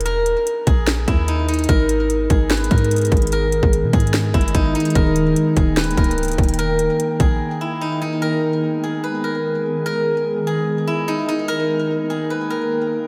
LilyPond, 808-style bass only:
\new Staff \with { instrumentName = "808-style bass" } { \clef bass \time 4/4 \key gis \minor \tempo 4 = 147 e,,16. dis,,16. r8. ais,,4 dis,4. | gis,,4. gis,,4 gis,4 gis,,8~ | gis,,8. gis,,8 b,16 gis,4 g,,8 gis,,8 r8 | dis,,4 r8 dis,,4 cis,,4 dis,,8 |
e,,16. dis,,16. r8. ais,,8 r2 | r1 | r1 | r1 | }